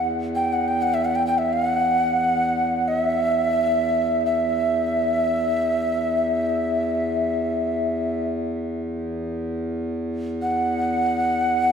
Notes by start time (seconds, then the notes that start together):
Already playing: E2
0.35 G5
0.53 F#5
0.68 G5
0.82 F#5
0.94 E5
1.05 F#5
1.15 G5
1.27 G5
1.38 E5
1.53 F5
1.66 F#5
2.88 E5
4.26 E5
10.42 F#5